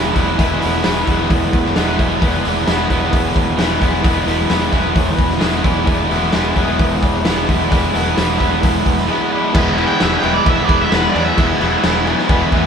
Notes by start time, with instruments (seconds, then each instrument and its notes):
Already playing: fingered electric bass E1, overdriven electric guitar E3 G#3 B3 E4
0.13 fingered electric bass E1, overdriven electric guitar B3 E4, transistor combo organ E4 G#4 D5, kick, open hi-hat
0.17 overdriven electric guitar G#3
0.36 fingered electric bass E1, overdriven electric guitar E3 G#3 B3 E4, transistor combo organ E4 G#4 B4, kick, open hi-hat
0.59 overdriven electric guitar B3 E4, transistor combo organ E4 G#4 B4, snare, open hi-hat
0.63 fingered electric bass E1, overdriven electric guitar G#3
0.81 overdriven electric guitar E3 G#3, transistor combo organ E4 G#4 B4, snare, open hi-hat
0.85 fingered electric bass E1, overdriven electric guitar B3 E4
1.04 fingered electric bass E1, overdriven electric guitar B3 E4, transistor combo organ E4 G#4 B4, kick, open hi-hat
1.10 overdriven electric guitar G#3
1.27 fingered electric bass E1, transistor combo organ E4 G#4 B4, kick, open hi-hat
1.49 fingered electric bass E1, transistor combo organ E4 G#4 B4
1.53 kick, open hi-hat
1.65 snare
1.75 fingered electric bass E1, overdriven electric guitar E3 G#3 B3, transistor combo organ E4 G#4 D5, snare, open hi-hat
1.79 overdriven electric guitar E4
1.97 fingered electric bass E1, overdriven electric guitar B3 E4, transistor combo organ E4 G#4 B4, kick, open hi-hat
2.02 overdriven electric guitar G#3
2.19 fingered electric bass E1, overdriven electric guitar E3 G#3, transistor combo organ E4 G#4 B4, kick, open hi-hat
2.23 overdriven electric guitar B3 E4
2.43 fingered electric bass E1, overdriven electric guitar B3 E4, transistor combo organ E4 G#4 D5, open hi-hat
2.48 overdriven electric guitar G#3
2.64 fingered electric bass E1, overdriven electric guitar E3, transistor combo organ E4 G#4 B4, snare, open hi-hat
2.69 overdriven electric guitar G#3 B3 E4
2.88 fingered electric bass E1, overdriven electric guitar B3 E4, transistor combo organ E4 G#4 B4, kick, open hi-hat
2.93 overdriven electric guitar G#3
3.09 transistor combo organ E4 G#4 B4, open hi-hat
3.13 fingered electric bass E1, kick
3.33 fingered electric bass E1, transistor combo organ E4 G#4 B4, kick, open hi-hat
3.55 fingered electric bass E1, overdriven electric guitar E3 G#3, transistor combo organ E4 G#4 B4, snare, open hi-hat
3.60 overdriven electric guitar B3 E4
3.77 transistor combo organ E4 G#4 B4, overdriven electric guitar E4
3.82 fingered electric bass E1, overdriven electric guitar G#3 B3, kick, open hi-hat
4.01 fingered electric bass E1, overdriven electric guitar E3 G#3, transistor combo organ E4 G#4 B4, kick
4.05 overdriven electric guitar B3 E4, open hi-hat
4.25 fingered electric bass E1, overdriven electric guitar B3 E4, transistor combo organ E4 G#4 B4, snare, open hi-hat
4.29 overdriven electric guitar G#3
4.45 overdriven electric guitar E3, transistor combo organ E4 G#4 B4
4.49 fingered electric bass E1, overdriven electric guitar G#3 B3 E4, snare, open hi-hat
4.70 fingered electric bass E1, overdriven electric guitar B3 E4, transistor combo organ E4 G#4 B4, kick, open hi-hat
4.75 overdriven electric guitar G#3
4.93 fingered electric bass E1, transistor combo organ E4 G#4 C#5, kick, open hi-hat
5.15 fingered electric bass E1, transistor combo organ E4 G#4 B4, kick, open hi-hat
5.30 snare
5.38 fingered electric bass E1, overdriven electric guitar E3 G#3 B3, transistor combo organ E4 G#4 B4, snare, open hi-hat
5.43 overdriven electric guitar E4
5.61 fingered electric bass E1, overdriven electric guitar B3 E4, transistor combo organ E4 G#4 D5, kick, open hi-hat
5.67 overdriven electric guitar G#3
5.85 fingered electric bass E1, overdriven electric guitar E3 G#3, transistor combo organ E4 G#4 D5, kick, open hi-hat
5.89 overdriven electric guitar B3 E4
6.09 fingered electric bass E1, overdriven electric guitar B3 E4, transistor combo organ E4 G#4 B4, snare, open hi-hat
6.13 overdriven electric guitar G#3
6.32 fingered electric bass E1, overdriven electric guitar E3 G#3 B3, transistor combo organ E4 G#4 B4, snare, open hi-hat
6.37 overdriven electric guitar E4
6.54 fingered electric bass E1, overdriven electric guitar B3 E4, transistor combo organ E4 G#4 B4, kick, open hi-hat
6.59 overdriven electric guitar G#3
6.78 fingered electric bass E1, transistor combo organ E4 G#4 B4, kick, open hi-hat
7.00 fingered electric bass E1, transistor combo organ E4 G#4 D5, kick, open hi-hat
7.23 fingered electric bass E1, overdriven electric guitar E3 G#3, transistor combo organ E4 G#4 B4, snare, open hi-hat
7.28 overdriven electric guitar B3 E4
7.46 fingered electric bass E1, overdriven electric guitar B3 E4, transistor combo organ E4 G#4 B4, kick, open hi-hat
7.51 overdriven electric guitar G#3
7.69 fingered electric bass E1, overdriven electric guitar E3 G#3 B3, transistor combo organ E4 G#4 D5, kick, open hi-hat
7.74 overdriven electric guitar E4
7.92 fingered electric bass E1, overdriven electric guitar B3 E4, transistor combo organ E4 G#4 B4, snare, open hi-hat
7.96 overdriven electric guitar G#3
8.15 fingered electric bass E1, overdriven electric guitar E3 G#3 B3 E4, transistor combo organ E4 G#4 B4, snare, open hi-hat
8.37 fingered electric bass E1, overdriven electric guitar B3 E4, transistor combo organ E4 G#4 B4, kick, open hi-hat
8.42 overdriven electric guitar G#3
8.60 fingered electric bass E1, transistor combo organ E4 G#4 B4, kick, open hi-hat
8.84 fingered electric bass E1, transistor combo organ E4 G#4 B4, kick, open hi-hat
8.97 snare
9.07 overdriven electric guitar E3 G#3 B3, transistor combo organ E4 G#4 B4
9.11 overdriven electric guitar E4
9.29 overdriven electric guitar B3 E4, transistor combo organ E4 G#4 D5
9.35 overdriven electric guitar G#3
9.53 fingered electric bass E1, overdriven electric guitar E3 G#3 B3 E4, transistor combo organ E4 G#4 B4, kick, crash
9.76 overdriven electric guitar E3 G#3 B3 E4, transistor combo organ E4 G#4 B4, crash
9.87 lead electric guitar G5
9.99 fingered electric bass E1, overdriven electric guitar E3 G#3 B3 E4, transistor combo organ E4 G#4 B4, lead electric guitar E5, snare, crash
10.19 overdriven electric guitar E3, transistor combo organ E4, lead electric guitar G5
10.23 fingered electric bass E1, overdriven electric guitar G#3 B3 E4, transistor combo organ G#4 B4, crash
10.34 lead electric guitar D5
10.45 fingered electric bass E1, overdriven electric guitar E3 G#3 B3 E4, transistor combo organ E4 G#4 B4, kick, crash
10.49 lead electric guitar E5
10.65 overdriven electric guitar E3 G#3, transistor combo organ E4, lead electric guitar D5
10.69 fingered electric bass E1, overdriven electric guitar B3 E4, transistor combo organ G#4 B4, kick, crash
10.81 lead electric guitar E5
10.90 fingered electric bass E1, overdriven electric guitar E3 G#3 B3 E4, transistor combo organ E4 G#4 B4, snare, crash
10.95 lead electric guitar B4
11.10 overdriven electric guitar E3, lead electric guitar D5
11.14 fingered electric bass E2, overdriven electric guitar G#3 B3 E4, transistor combo organ E4 G#4 C#5, crash
11.25 lead electric guitar E5
11.37 fingered electric bass E1, overdriven electric guitar E3 G#3 B3 E4, transistor combo organ E4 G#4 B4, kick, crash
11.58 fingered electric bass E1, overdriven electric guitar E3 G#3 B3 E4, transistor combo organ E4 G#4 B4, snare, crash
11.83 fingered electric bass E1, overdriven electric guitar E3 G#3 B3 E4, transistor combo organ E4 G#4 B4, snare, crash
12.06 overdriven electric guitar E3 G#3 B3 E4, transistor combo organ E4 G#4 B4, crash
12.18 snare
12.28 fingered electric bass E1, overdriven electric guitar E3 G#3 B3 E4, transistor combo organ E4 G#4 B4, kick, crash
12.51 fingered electric bass E2, overdriven electric guitar E3 G#3 B3 E4, transistor combo organ E4 G#4 B4, kick, crash